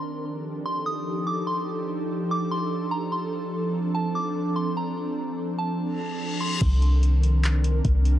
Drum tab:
CC |--------|--------|--------|--------|
HH |--------|--------|--------|--------|
CP |--------|--------|--------|--------|
BD |--------|--------|--------|--------|

CC |x-------|
HH |xxxxxxxx|
CP |----x---|
BD |o-----o-|